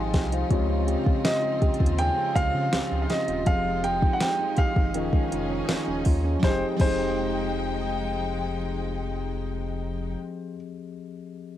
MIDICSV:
0, 0, Header, 1, 7, 480
1, 0, Start_track
1, 0, Key_signature, -4, "minor"
1, 0, Tempo, 740741
1, 328, Time_signature, 4, 2, 24, 8
1, 7501, End_track
2, 0, Start_track
2, 0, Title_t, "Grand piano"
2, 0, Program_c, 0, 0
2, 807, Note_on_c, 0, 75, 93
2, 1261, Note_off_c, 0, 75, 0
2, 1287, Note_on_c, 0, 79, 118
2, 1526, Note_on_c, 0, 77, 123
2, 1534, Note_off_c, 0, 79, 0
2, 1948, Note_off_c, 0, 77, 0
2, 1958, Note_on_c, 0, 77, 67
2, 2005, Note_off_c, 0, 77, 0
2, 2009, Note_on_c, 0, 75, 93
2, 2247, Note_on_c, 0, 77, 105
2, 2256, Note_off_c, 0, 75, 0
2, 2488, Note_on_c, 0, 79, 107
2, 2494, Note_off_c, 0, 77, 0
2, 2669, Note_off_c, 0, 79, 0
2, 2678, Note_on_c, 0, 78, 80
2, 2726, Note_off_c, 0, 78, 0
2, 2731, Note_on_c, 0, 79, 99
2, 2968, Note_on_c, 0, 77, 98
2, 2977, Note_off_c, 0, 79, 0
2, 3902, Note_off_c, 0, 77, 0
2, 4174, Note_on_c, 0, 72, 87
2, 4305, Note_off_c, 0, 72, 0
2, 4413, Note_on_c, 0, 72, 90
2, 6845, Note_off_c, 0, 72, 0
2, 7501, End_track
3, 0, Start_track
3, 0, Title_t, "Tine electric piano"
3, 0, Program_c, 1, 4
3, 0, Control_c, 1, 64, 127
3, 0, Note_on_c, 1, 53, 67
3, 0, Note_on_c, 1, 60, 65
3, 0, Note_on_c, 1, 68, 64
3, 0, Note_on_c, 1, 75, 61
3, 0, Note_on_c, 1, 79, 57
3, 0, Note_on_c, 1, 80, 78
3, 0, Note_on_c, 1, 84, 66
3, 199, Note_off_c, 1, 80, 0
3, 201, Note_off_c, 1, 75, 0
3, 216, Note_on_c, 1, 77, 71
3, 219, Note_on_c, 1, 72, 57
3, 296, Note_off_c, 1, 53, 0
3, 300, Note_off_c, 1, 60, 0
3, 307, Note_off_c, 1, 68, 0
3, 318, Note_on_c, 1, 49, 81
3, 324, Note_on_c, 1, 56, 78
3, 331, Note_on_c, 1, 60, 80
3, 335, Control_c, 1, 64, 0
3, 336, Note_off_c, 1, 79, 0
3, 336, Note_on_c, 1, 65, 75
3, 340, Note_off_c, 1, 84, 0
3, 343, Note_on_c, 1, 67, 77
3, 348, Note_on_c, 1, 75, 94
3, 440, Note_off_c, 1, 77, 0
3, 442, Note_off_c, 1, 72, 0
3, 452, Control_c, 1, 64, 127
3, 2217, Note_off_c, 1, 49, 0
3, 2220, Note_off_c, 1, 56, 0
3, 2223, Note_off_c, 1, 60, 0
3, 2226, Note_off_c, 1, 65, 0
3, 2229, Note_off_c, 1, 67, 0
3, 2232, Note_off_c, 1, 75, 0
3, 2236, Note_on_c, 1, 53, 66
3, 2244, Note_on_c, 1, 60, 61
3, 2250, Note_on_c, 1, 67, 63
3, 2255, Control_c, 1, 64, 0
3, 2257, Note_on_c, 1, 68, 62
3, 2265, Note_on_c, 1, 75, 75
3, 2368, Control_c, 1, 64, 127
3, 3182, Note_off_c, 1, 53, 0
3, 3187, Note_off_c, 1, 60, 0
3, 3190, Note_off_c, 1, 67, 0
3, 3193, Note_off_c, 1, 68, 0
3, 3194, Note_on_c, 1, 51, 65
3, 3197, Note_off_c, 1, 75, 0
3, 3202, Note_on_c, 1, 61, 59
3, 3208, Note_on_c, 1, 65, 63
3, 3215, Note_on_c, 1, 68, 65
3, 3217, Control_c, 1, 64, 0
3, 3222, Note_on_c, 1, 75, 74
3, 3335, Control_c, 1, 64, 127
3, 4140, Note_on_c, 1, 53, 86
3, 4141, Note_off_c, 1, 51, 0
3, 4146, Note_off_c, 1, 61, 0
3, 4149, Note_off_c, 1, 65, 0
3, 4152, Note_off_c, 1, 68, 0
3, 4154, Note_on_c, 1, 60, 80
3, 4156, Note_off_c, 1, 75, 0
3, 4169, Note_on_c, 1, 67, 77
3, 4177, Control_c, 1, 64, 0
3, 4183, Note_on_c, 1, 68, 81
3, 4197, Note_on_c, 1, 75, 98
3, 4287, Note_off_c, 1, 53, 0
3, 4294, Note_off_c, 1, 60, 0
3, 4302, Note_off_c, 1, 67, 0
3, 4307, Control_c, 1, 64, 127
3, 4310, Note_off_c, 1, 68, 0
3, 4317, Note_off_c, 1, 75, 0
3, 4379, Note_on_c, 1, 53, 80
3, 4394, Note_on_c, 1, 60, 77
3, 4408, Note_on_c, 1, 67, 77
3, 4422, Note_on_c, 1, 68, 75
3, 4437, Note_on_c, 1, 75, 91
3, 6810, Note_off_c, 1, 53, 0
3, 6826, Note_off_c, 1, 60, 0
3, 6840, Note_off_c, 1, 67, 0
3, 6854, Note_off_c, 1, 68, 0
3, 6869, Note_off_c, 1, 75, 0
3, 7501, End_track
4, 0, Start_track
4, 0, Title_t, "Nylon-string guitar"
4, 0, Program_c, 2, 24
4, 0, Note_on_c, 2, 53, 92
4, 0, Note_on_c, 2, 56, 59
4, 0, Note_on_c, 2, 63, 66
4, 0, Note_on_c, 2, 67, 73
4, 84, Note_off_c, 2, 67, 0
4, 86, Note_on_c, 2, 67, 76
4, 204, Note_off_c, 2, 63, 0
4, 207, Note_on_c, 2, 63, 64
4, 326, Note_on_c, 2, 49, 92
4, 444, Note_off_c, 2, 56, 0
4, 446, Note_on_c, 2, 60, 66
4, 563, Note_off_c, 2, 67, 0
4, 566, Note_on_c, 2, 67, 77
4, 585, Note_off_c, 2, 53, 0
4, 683, Note_off_c, 2, 63, 0
4, 686, Note_on_c, 2, 65, 63
4, 802, Note_off_c, 2, 67, 0
4, 804, Note_on_c, 2, 67, 72
4, 925, Note_off_c, 2, 65, 0
4, 927, Note_on_c, 2, 65, 66
4, 1045, Note_off_c, 2, 67, 0
4, 1047, Note_on_c, 2, 67, 72
4, 1165, Note_off_c, 2, 65, 0
4, 1167, Note_on_c, 2, 65, 64
4, 1279, Note_off_c, 2, 49, 0
4, 1287, Note_on_c, 2, 49, 94
4, 1405, Note_off_c, 2, 60, 0
4, 1408, Note_on_c, 2, 60, 61
4, 1524, Note_off_c, 2, 67, 0
4, 1527, Note_on_c, 2, 67, 71
4, 1643, Note_off_c, 2, 65, 0
4, 1646, Note_on_c, 2, 65, 62
4, 1764, Note_off_c, 2, 67, 0
4, 1767, Note_on_c, 2, 67, 73
4, 1884, Note_off_c, 2, 65, 0
4, 1887, Note_on_c, 2, 65, 64
4, 1998, Note_off_c, 2, 67, 0
4, 2006, Note_on_c, 2, 67, 69
4, 2123, Note_off_c, 2, 65, 0
4, 2125, Note_on_c, 2, 65, 65
4, 2246, Note_on_c, 2, 53, 86
4, 2295, Note_off_c, 2, 49, 0
4, 2295, Note_off_c, 2, 67, 0
4, 2296, Note_off_c, 2, 60, 0
4, 2365, Note_on_c, 2, 56, 63
4, 2484, Note_on_c, 2, 67, 74
4, 2504, Note_off_c, 2, 65, 0
4, 2605, Note_on_c, 2, 63, 65
4, 2717, Note_off_c, 2, 67, 0
4, 2725, Note_on_c, 2, 67, 72
4, 2841, Note_off_c, 2, 63, 0
4, 2844, Note_on_c, 2, 63, 66
4, 2955, Note_off_c, 2, 67, 0
4, 2963, Note_on_c, 2, 67, 69
4, 3081, Note_off_c, 2, 63, 0
4, 3084, Note_on_c, 2, 63, 63
4, 3202, Note_off_c, 2, 53, 0
4, 3204, Note_on_c, 2, 51, 89
4, 3253, Note_off_c, 2, 67, 0
4, 3320, Note_off_c, 2, 56, 0
4, 3323, Note_on_c, 2, 56, 59
4, 3443, Note_on_c, 2, 65, 73
4, 3463, Note_off_c, 2, 63, 0
4, 3563, Note_on_c, 2, 61, 64
4, 3680, Note_off_c, 2, 65, 0
4, 3683, Note_on_c, 2, 65, 76
4, 3794, Note_off_c, 2, 61, 0
4, 3802, Note_on_c, 2, 61, 62
4, 3920, Note_off_c, 2, 65, 0
4, 3922, Note_on_c, 2, 65, 70
4, 4035, Note_off_c, 2, 61, 0
4, 4043, Note_on_c, 2, 61, 61
4, 4139, Note_off_c, 2, 51, 0
4, 4142, Note_on_c, 2, 53, 95
4, 4166, Note_off_c, 2, 56, 0
4, 4168, Note_on_c, 2, 56, 88
4, 4187, Note_off_c, 2, 61, 0
4, 4189, Note_on_c, 2, 63, 95
4, 4207, Note_off_c, 2, 65, 0
4, 4210, Note_on_c, 2, 67, 102
4, 4380, Note_off_c, 2, 53, 0
4, 4383, Note_on_c, 2, 53, 98
4, 4402, Note_off_c, 2, 63, 0
4, 4402, Note_off_c, 2, 67, 0
4, 4406, Note_off_c, 2, 56, 0
4, 4409, Note_on_c, 2, 56, 98
4, 4430, Note_on_c, 2, 63, 102
4, 4449, Note_on_c, 2, 67, 100
4, 6840, Note_off_c, 2, 53, 0
4, 6866, Note_off_c, 2, 56, 0
4, 6888, Note_off_c, 2, 63, 0
4, 6907, Note_off_c, 2, 67, 0
4, 7501, End_track
5, 0, Start_track
5, 0, Title_t, "String section"
5, 0, Program_c, 3, 48
5, 0, Note_on_c, 3, 53, 83
5, 0, Note_on_c, 3, 56, 72
5, 0, Note_on_c, 3, 63, 75
5, 0, Note_on_c, 3, 65, 88
5, 307, Note_off_c, 3, 56, 0
5, 325, Note_on_c, 3, 60, 77
5, 2222, Note_off_c, 3, 53, 0
5, 2223, Note_off_c, 3, 63, 0
5, 2227, Note_off_c, 3, 60, 0
5, 2246, Note_on_c, 3, 53, 82
5, 2247, Note_on_c, 3, 63, 76
5, 2248, Note_on_c, 3, 56, 72
5, 3180, Note_off_c, 3, 65, 0
5, 3198, Note_off_c, 3, 56, 0
5, 3198, Note_off_c, 3, 63, 0
5, 3204, Note_on_c, 3, 61, 70
5, 3205, Note_on_c, 3, 68, 84
5, 3206, Note_on_c, 3, 63, 74
5, 4148, Note_off_c, 3, 53, 0
5, 4156, Note_off_c, 3, 61, 0
5, 4157, Note_off_c, 3, 63, 0
5, 4157, Note_off_c, 3, 68, 0
5, 4164, Note_on_c, 3, 53, 84
5, 4164, Note_on_c, 3, 63, 74
5, 4166, Note_on_c, 3, 56, 78
5, 4166, Note_on_c, 3, 79, 93
5, 6578, Note_off_c, 3, 53, 0
5, 6578, Note_off_c, 3, 63, 0
5, 6579, Note_off_c, 3, 56, 0
5, 6579, Note_off_c, 3, 79, 0
5, 7501, End_track
6, 0, Start_track
6, 0, Title_t, "Sub bass"
6, 0, Program_c, 4, 38
6, 0, Note_on_c, 4, 32, 89
6, 92, Note_on_c, 4, 36, 91
6, 102, Note_off_c, 4, 32, 0
6, 284, Note_off_c, 4, 36, 0
6, 330, Note_on_c, 4, 37, 116
6, 619, Note_off_c, 4, 37, 0
6, 690, Note_on_c, 4, 39, 50
6, 738, Note_off_c, 4, 39, 0
6, 1051, Note_on_c, 4, 39, 49
6, 1098, Note_off_c, 4, 39, 0
6, 1170, Note_on_c, 4, 39, 91
6, 1362, Note_off_c, 4, 39, 0
6, 1529, Note_on_c, 4, 37, 82
6, 1625, Note_off_c, 4, 37, 0
6, 1649, Note_on_c, 4, 49, 106
6, 1745, Note_off_c, 4, 49, 0
6, 1770, Note_on_c, 4, 37, 47
6, 1817, Note_off_c, 4, 37, 0
6, 1890, Note_on_c, 4, 37, 91
6, 1986, Note_off_c, 4, 37, 0
6, 2128, Note_on_c, 4, 27, 92
6, 2224, Note_off_c, 4, 27, 0
6, 2248, Note_on_c, 4, 29, 113
6, 2634, Note_off_c, 4, 29, 0
6, 2969, Note_on_c, 4, 31, 51
6, 3017, Note_off_c, 4, 31, 0
6, 3089, Note_on_c, 4, 31, 93
6, 3185, Note_off_c, 4, 31, 0
6, 3206, Note_on_c, 4, 27, 115
6, 3303, Note_off_c, 4, 27, 0
6, 3327, Note_on_c, 4, 29, 49
6, 3375, Note_off_c, 4, 29, 0
6, 3448, Note_on_c, 4, 29, 99
6, 3641, Note_off_c, 4, 29, 0
6, 3687, Note_on_c, 4, 27, 49
6, 3735, Note_off_c, 4, 27, 0
6, 3810, Note_on_c, 4, 27, 91
6, 3905, Note_off_c, 4, 27, 0
6, 3929, Note_on_c, 4, 39, 97
6, 4122, Note_off_c, 4, 39, 0
6, 4168, Note_on_c, 4, 29, 101
6, 4301, Note_off_c, 4, 29, 0
6, 4408, Note_on_c, 4, 29, 101
6, 6580, Note_off_c, 4, 29, 0
6, 7501, End_track
7, 0, Start_track
7, 0, Title_t, "Drums"
7, 89, Note_on_c, 9, 42, 55
7, 90, Note_on_c, 9, 36, 87
7, 92, Note_on_c, 9, 38, 69
7, 154, Note_off_c, 9, 42, 0
7, 155, Note_off_c, 9, 36, 0
7, 156, Note_off_c, 9, 38, 0
7, 209, Note_on_c, 9, 42, 54
7, 274, Note_off_c, 9, 42, 0
7, 327, Note_on_c, 9, 42, 62
7, 328, Note_on_c, 9, 36, 110
7, 392, Note_off_c, 9, 42, 0
7, 393, Note_off_c, 9, 36, 0
7, 570, Note_on_c, 9, 42, 73
7, 635, Note_off_c, 9, 42, 0
7, 689, Note_on_c, 9, 36, 97
7, 754, Note_off_c, 9, 36, 0
7, 808, Note_on_c, 9, 38, 124
7, 809, Note_on_c, 9, 42, 82
7, 873, Note_off_c, 9, 38, 0
7, 874, Note_off_c, 9, 42, 0
7, 1048, Note_on_c, 9, 42, 35
7, 1049, Note_on_c, 9, 36, 106
7, 1113, Note_off_c, 9, 42, 0
7, 1114, Note_off_c, 9, 36, 0
7, 1127, Note_on_c, 9, 42, 49
7, 1168, Note_on_c, 9, 36, 96
7, 1192, Note_off_c, 9, 42, 0
7, 1206, Note_on_c, 9, 42, 63
7, 1233, Note_off_c, 9, 36, 0
7, 1271, Note_off_c, 9, 42, 0
7, 1286, Note_on_c, 9, 42, 79
7, 1350, Note_off_c, 9, 42, 0
7, 1527, Note_on_c, 9, 36, 94
7, 1531, Note_on_c, 9, 42, 70
7, 1592, Note_off_c, 9, 36, 0
7, 1596, Note_off_c, 9, 42, 0
7, 1767, Note_on_c, 9, 38, 107
7, 1768, Note_on_c, 9, 42, 75
7, 1832, Note_off_c, 9, 38, 0
7, 1833, Note_off_c, 9, 42, 0
7, 2007, Note_on_c, 9, 42, 58
7, 2009, Note_on_c, 9, 38, 66
7, 2071, Note_off_c, 9, 42, 0
7, 2074, Note_off_c, 9, 38, 0
7, 2126, Note_on_c, 9, 42, 54
7, 2191, Note_off_c, 9, 42, 0
7, 2244, Note_on_c, 9, 42, 61
7, 2246, Note_on_c, 9, 36, 119
7, 2309, Note_off_c, 9, 42, 0
7, 2311, Note_off_c, 9, 36, 0
7, 2488, Note_on_c, 9, 42, 73
7, 2553, Note_off_c, 9, 42, 0
7, 2607, Note_on_c, 9, 36, 99
7, 2672, Note_off_c, 9, 36, 0
7, 2725, Note_on_c, 9, 38, 122
7, 2726, Note_on_c, 9, 42, 77
7, 2790, Note_off_c, 9, 38, 0
7, 2791, Note_off_c, 9, 42, 0
7, 2959, Note_on_c, 9, 42, 59
7, 2967, Note_on_c, 9, 36, 110
7, 3024, Note_off_c, 9, 42, 0
7, 3032, Note_off_c, 9, 36, 0
7, 3087, Note_on_c, 9, 36, 98
7, 3151, Note_off_c, 9, 36, 0
7, 3204, Note_on_c, 9, 42, 79
7, 3269, Note_off_c, 9, 42, 0
7, 3324, Note_on_c, 9, 36, 101
7, 3389, Note_off_c, 9, 36, 0
7, 3449, Note_on_c, 9, 42, 68
7, 3514, Note_off_c, 9, 42, 0
7, 3686, Note_on_c, 9, 38, 106
7, 3686, Note_on_c, 9, 42, 78
7, 3751, Note_off_c, 9, 38, 0
7, 3751, Note_off_c, 9, 42, 0
7, 3921, Note_on_c, 9, 46, 68
7, 3928, Note_on_c, 9, 36, 89
7, 3985, Note_off_c, 9, 46, 0
7, 3993, Note_off_c, 9, 36, 0
7, 4166, Note_on_c, 9, 36, 105
7, 4166, Note_on_c, 9, 38, 89
7, 4231, Note_off_c, 9, 36, 0
7, 4231, Note_off_c, 9, 38, 0
7, 4404, Note_on_c, 9, 49, 86
7, 4406, Note_on_c, 9, 36, 114
7, 4469, Note_off_c, 9, 49, 0
7, 4471, Note_off_c, 9, 36, 0
7, 7501, End_track
0, 0, End_of_file